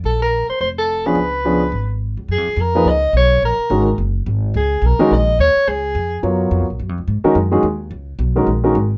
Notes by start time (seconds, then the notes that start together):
0.04 A#1 A4
0.22 A#4
0.49 C5, muted upright bass stroke
0.60 F1 C5
0.78 A4
1.06 F3 B3 C#4 D4 G#4 B4
1.15 C#2
1.45 F3 B3 C#4 D4 G#4
1.72 G#1
2.17 C#2
2.28 F#2 G#4
2.38 F2
2.47 C#2
2.56 F2
2.61 A#4
2.75 F3 A#3 D#4 G#4 B4
2.85 C#2 D#5
3.13 B1 C#5
3.42 A#1 A#4
3.59 muted upright bass stroke
3.70 G#1 D#3 G#3 C#4 F#4 A#4
3.98 F#1
4.26 G#1
4.54 C#2 G#4
4.82 B1 A#4
4.99 D#3 G#3 C#4 F#4 A#4
5.11 A#1 D#5
5.39 D#2 C#5
5.56 muted upright bass stroke
5.67 C#2 G#4
5.95 F2
6.23 F#2 F#3 B3 F4 A#4 C#5
6.51 F2
6.60 C#2
6.70 A#1
6.79 F#2
6.89 F2
6.98 C#2
7.08 G#2
7.24 D#3 G#3 C#4 F#4 A#4, muted upright bass stroke
7.35 F#2
7.51 D#3 G#3 C#4 F#4 G#4
7.63 D#2
7.91 C#2
8.19 B1
8.36 D#3 G#3 C#4 F#4 A#4
8.47 A#1
8.64 D#3 G#3 C#4 F#4 A#4
8.75 G#1